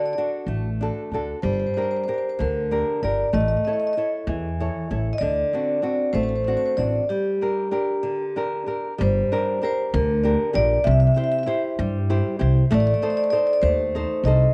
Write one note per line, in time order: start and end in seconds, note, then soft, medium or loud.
0.00 0.14 D3 medium
0.00 0.17 D4 soft
0.00 0.17 F#4 soft
0.00 0.17 A4 soft
0.06 0.12 D5 soft
0.13 0.20 D5 medium
0.18 0.68 D4 soft
0.18 0.68 F#4 soft
0.18 0.68 A4 soft
0.46 0.88 A1 medium
0.46 1.10 A3 soft
0.81 1.12 D4 soft
0.81 1.13 F#4 soft
0.81 1.13 A4 soft
1.12 1.32 D2 soft
1.12 1.38 D4 soft
1.12 1.39 F#4 soft
1.12 1.38 A4 soft
1.42 1.65 G1 medium
1.42 2.06 G3 medium
1.42 1.51 C5 medium
1.53 1.58 C5 soft
1.60 1.65 C5 soft
1.67 1.73 C5 soft
1.74 2.07 D4 soft
1.74 2.07 G4 soft
1.74 2.07 A#4 soft
1.74 1.81 C5 soft
1.82 1.90 C5 soft
1.91 1.95 C5 soft
1.97 2.02 C5 soft
2.04 2.12 C5 medium
2.08 2.59 D4 soft
2.08 2.60 G4 soft
2.08 2.59 A#4 soft
2.14 2.17 C5 soft
2.18 2.26 C5 soft
2.29 2.36 C5 soft
2.39 2.81 D2 medium
2.39 3.01 D3 medium
2.39 3.00 A#4 medium
2.71 3.02 D4 soft
2.71 3.03 G4 soft
2.71 3.03 A#4 soft
3.03 3.23 G1 medium
3.03 3.28 D4 soft
3.03 3.28 G4 soft
3.03 3.28 A#4 soft
3.03 3.32 D5 medium
3.33 3.54 A1 medium
3.33 3.94 A3 medium
3.33 3.39 D#5 medium
3.41 3.47 D#5 medium
3.48 3.56 D#5 medium
3.57 3.64 D#5 soft
3.65 3.96 E4 soft
3.65 3.97 A4 soft
3.65 3.96 C#5 soft
3.65 3.71 D#5 soft
3.73 3.79 D#5 soft
3.80 3.86 D#5 medium
3.87 3.92 D#5 medium
3.93 4.00 D#5 medium
3.97 4.47 E4 soft
3.97 4.48 A4 soft
3.97 4.47 C#5 soft
4.27 4.68 E2 medium
4.27 4.88 E3 medium
4.60 4.89 E4 soft
4.60 4.90 A4 soft
4.60 4.90 C#5 soft
4.91 5.10 A1 medium
4.91 5.15 E4 soft
4.91 5.15 A4 soft
4.91 5.15 C#5 soft
5.13 5.20 D#5 medium
5.18 5.41 D2 medium
5.18 5.82 D3 medium
5.18 6.09 D5 medium
5.53 5.81 C4 soft
5.53 5.82 D4 soft
5.53 5.82 F#4 soft
5.82 6.33 C4 soft
5.82 6.33 D4 soft
5.82 6.34 F#4 soft
6.13 6.55 A1 medium
6.13 6.75 A3 medium
6.13 6.20 C5 medium
6.23 6.28 C5 medium
6.29 6.34 C5 medium
6.36 6.43 C5 medium
6.45 6.77 C4 soft
6.45 6.77 D4 soft
6.45 6.78 F#4 soft
6.45 6.48 C5 medium
6.50 6.56 C5 medium
6.57 6.64 C5 medium
6.66 6.73 C5 medium
6.77 6.98 A1 medium
6.77 7.03 C4 soft
6.77 7.03 D4 soft
6.77 7.03 F#4 soft
6.77 7.06 D5 medium
7.09 7.71 G3 medium
7.09 8.65 G4 medium
7.41 7.70 D4 soft
7.41 7.71 G4 soft
7.41 7.71 A#4 soft
7.71 8.23 D4 soft
7.71 8.24 G4 soft
7.71 8.24 A#4 soft
8.03 8.66 D3 medium
8.36 8.65 D4 soft
8.36 8.66 G4 soft
8.36 8.66 A#4 soft
8.66 8.92 D4 soft
8.66 8.93 G4 soft
8.66 8.93 A#4 soft
8.98 9.22 G1 medium
8.98 9.61 G3 medium
8.98 9.60 C5 medium
9.32 9.60 D4 soft
9.32 9.61 G4 soft
9.32 9.62 A#4 medium
9.62 10.12 D4 soft
9.62 10.13 G4 soft
9.62 10.13 A#4 medium
9.62 9.78 C5 medium
9.94 10.34 D2 medium
9.94 10.54 D3 medium
9.94 10.52 A#4 medium
10.23 10.52 D4 soft
10.23 10.53 G4 soft
10.23 10.53 A#4 medium
10.53 10.75 A#1 medium
10.53 10.79 D4 soft
10.53 10.79 G4 soft
10.53 10.79 A#4 soft
10.53 10.84 D5 medium
10.84 11.07 C2 medium
10.84 11.45 C3 medium
10.84 10.90 E5 medium
10.91 10.99 E5 medium
11.00 11.06 E5 medium
11.07 11.13 E5 medium
11.15 11.45 E4 medium
11.15 11.46 G4 soft
11.15 11.46 C5 medium
11.15 11.22 E5 medium
11.24 11.30 E5 medium
11.32 11.37 E5 medium
11.39 11.42 E5 medium
11.43 11.97 E4 medium
11.43 11.97 G4 soft
11.43 11.51 E5 medium
11.47 11.97 C5 medium
11.79 12.19 G2 medium
11.79 12.39 G3 medium
12.10 12.38 E4 medium
12.10 12.38 G4 soft
12.10 12.38 C5 medium
12.39 12.60 C2 medium
12.39 12.64 E4 soft
12.39 12.64 G4 soft
12.39 12.64 C5 medium
12.71 12.92 A1 medium
12.71 13.31 A3 medium
12.71 12.79 D5 medium
12.80 12.86 D5 medium
12.87 12.93 D5 medium
12.94 13.01 D5 medium
13.02 13.31 D#4 soft
13.02 13.32 A4 soft
13.02 13.32 C5 medium
13.02 13.08 D5 medium
13.10 13.16 D5 medium
13.17 13.23 D5 medium
13.24 13.29 D5 medium
13.30 13.82 D#4 soft
13.30 13.83 A4 soft
13.30 13.83 C5 medium
13.30 13.37 D5 medium
13.38 13.44 D5 medium
13.47 13.52 D5 medium
13.53 13.59 D5 medium
13.62 14.03 D#2 medium
13.62 14.24 A3 medium
13.62 14.27 C5 medium
13.95 14.25 D#4 soft
13.95 14.25 A4 soft
13.95 14.26 C5 medium
14.23 14.44 C2 medium
14.23 14.50 D#4 soft
14.23 14.51 A4 soft
14.23 14.54 D#5 medium
14.28 14.51 C5 medium